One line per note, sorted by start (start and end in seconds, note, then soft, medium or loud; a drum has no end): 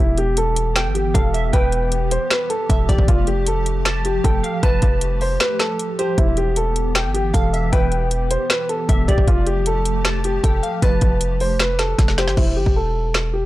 0.00 0.87 E1 loud
0.00 3.05 E3 medium
0.00 3.05 B3 medium
0.00 0.16 E4 medium
0.00 9.24 G4 medium
0.18 0.36 G4 medium
0.18 closed hi-hat medium
0.37 0.92 A4 medium
0.37 closed hi-hat medium
0.56 closed hi-hat medium
0.76 1.12 G5 medium
0.76 finger snap loud
0.76 snare loud
0.76 closed hi-hat medium
0.86 1.13 G1 loud
0.95 1.13 G4 medium
0.95 closed hi-hat medium
1.14 1.52 E1 loud
1.14 1.51 A4 medium
1.14 1.33 F5 medium
1.14 kick loud
1.14 closed hi-hat medium
1.34 1.52 E5 loud
1.34 closed hi-hat medium
1.53 2.18 E1 loud
1.53 2.08 B4 medium
1.53 2.27 G5 loud
1.53 kick loud
1.53 closed hi-hat medium
1.72 closed hi-hat medium
1.92 closed hi-hat loud
2.11 2.29 C5 medium
2.11 closed hi-hat medium
2.30 2.48 B4 medium
2.30 finger snap loud
2.30 snare loud
2.30 closed hi-hat medium
2.50 2.86 A4 medium
2.50 closed hi-hat medium
2.70 2.88 E1 loud
2.70 2.88 E5 medium
2.70 kick loud
2.70 closed hi-hat medium
2.89 2.98 E1 loud
2.89 3.07 G4 medium
2.89 3.07 D5 loud
2.89 kick medium
2.89 closed hi-hat medium
2.98 3.08 E1 loud
2.98 kick loud
3.08 4.20 F1 loud
3.08 6.15 F3 medium
3.08 6.15 A3 medium
3.08 3.26 F4 medium
3.08 kick loud
3.08 closed hi-hat medium
3.27 3.45 G4 medium
3.27 closed hi-hat medium
3.46 4.02 A4 medium
3.46 closed hi-hat loud
3.66 closed hi-hat medium
3.85 4.22 A5 medium
3.85 finger snap loud
3.85 snare loud
3.85 closed hi-hat medium
4.05 4.23 G4 medium
4.05 closed hi-hat medium
4.24 4.43 F1 loud
4.24 4.61 A4 medium
4.24 4.43 G5 medium
4.24 kick loud
4.24 closed hi-hat medium
4.43 4.62 F5 medium
4.43 closed hi-hat medium
4.63 4.82 F1 loud
4.63 5.18 B4 loud
4.63 5.37 A5 loud
4.63 kick loud
4.63 closed hi-hat medium
4.82 5.38 F1 loud
4.82 kick loud
4.82 closed hi-hat medium
5.01 closed hi-hat loud
5.21 5.39 C5 medium
5.21 open hi-hat medium
5.40 5.58 B4 medium
5.40 finger snap loud
5.40 snare loud
5.40 closed hi-hat medium
5.59 5.96 A4 medium
5.59 finger snap medium
5.59 snare medium
5.59 closed hi-hat medium
5.79 closed hi-hat medium
5.99 6.16 G4 medium
5.99 6.17 C5 medium
5.99 closed hi-hat medium
6.18 7.06 E1 loud
6.18 9.25 E3 medium
6.18 9.25 B3 medium
6.18 6.35 E4 medium
6.18 kick loud
6.18 closed hi-hat medium
6.37 6.55 G4 medium
6.37 closed hi-hat medium
6.56 7.11 A4 medium
6.56 closed hi-hat loud
6.76 closed hi-hat medium
6.95 7.32 G5 medium
6.95 finger snap loud
6.95 snare loud
6.95 closed hi-hat medium
7.05 7.33 G1 loud
7.14 7.32 G4 medium
7.14 closed hi-hat medium
7.34 7.71 E1 loud
7.34 7.70 A4 medium
7.34 7.52 F5 medium
7.34 kick loud
7.34 closed hi-hat medium
7.53 7.72 E5 loud
7.53 closed hi-hat medium
7.72 8.38 E1 loud
7.72 8.27 B4 medium
7.72 8.46 G5 loud
7.72 kick loud
7.72 closed hi-hat medium
7.92 closed hi-hat medium
8.11 closed hi-hat medium
8.31 8.48 C5 medium
8.31 closed hi-hat medium
8.50 8.68 B4 medium
8.50 finger snap loud
8.50 snare loud
8.50 closed hi-hat medium
8.69 9.06 A4 medium
8.69 closed hi-hat medium
8.89 9.07 E1 loud
8.89 9.07 E5 medium
8.89 kick loud
8.89 closed hi-hat medium
9.08 9.17 E1 loud
9.08 9.26 G4 medium
9.08 9.27 D5 medium
9.08 kick medium
9.08 closed hi-hat medium
9.18 9.27 E1 loud
9.18 kick loud
9.28 10.40 F1 loud
9.28 12.34 F3 medium
9.28 12.34 A3 medium
9.28 9.45 F4 medium
9.28 12.34 G4 medium
9.28 kick loud
9.28 closed hi-hat medium
9.47 9.64 G4 medium
9.47 closed hi-hat medium
9.66 10.21 A4 medium
9.66 closed hi-hat loud
9.85 closed hi-hat medium
10.04 10.41 A5 loud
10.04 finger snap loud
10.04 snare loud
10.04 closed hi-hat medium
10.24 10.42 G4 medium
10.24 closed hi-hat medium
10.43 10.62 F1 loud
10.43 10.80 A4 medium
10.43 10.62 G5 medium
10.43 kick loud
10.43 closed hi-hat medium
10.63 10.81 F5 medium
10.63 closed hi-hat medium
10.82 11.01 F1 loud
10.82 11.37 B4 loud
10.82 11.56 A5 loud
10.82 kick loud
10.82 closed hi-hat medium
11.01 11.95 F1 loud
11.01 kick medium
11.01 closed hi-hat medium
11.21 closed hi-hat loud
11.40 11.58 C5 medium
11.40 open hi-hat medium
11.59 11.78 B4 medium
11.59 finger snap loud
11.59 snare loud
11.59 closed hi-hat medium
11.79 12.15 A4 medium
11.79 finger snap medium
11.79 snare medium
11.79 closed hi-hat medium
11.99 12.29 F1 loud
11.99 kick loud
11.99 snare medium
11.99 closed hi-hat medium
12.08 snare medium
12.18 12.36 G4 medium
12.18 12.36 C5 medium
12.18 snare loud
12.18 closed hi-hat medium
12.28 12.37 G1 loud
12.28 snare loud
12.37 12.58 E1 loud
12.37 12.55 E4 medium
12.37 kick loud
12.37 crash medium
12.57 12.66 G1 loud
12.57 12.74 G4 medium
12.66 13.46 E1 loud
12.66 kick medium
12.76 13.31 A4 medium
13.14 finger snap loud
13.14 snare loud
13.34 13.46 G4 medium